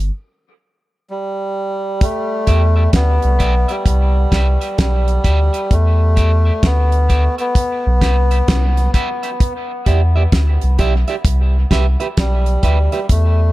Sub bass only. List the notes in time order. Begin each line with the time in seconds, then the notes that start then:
Already playing: G1
2.48 E2
2.94 D2
3.24 C2
3.41 B1
3.86 C2
4.33 C2
4.79 B1
5.25 D2
5.72 E2
6.64 D2
7.86 B1
8.02 C2
8.49 C2
9.87 E2
10.33 D2
10.63 C2
10.80 B1
11.25 C2
11.72 C2
12.18 B1
12.64 D2
13.10 E2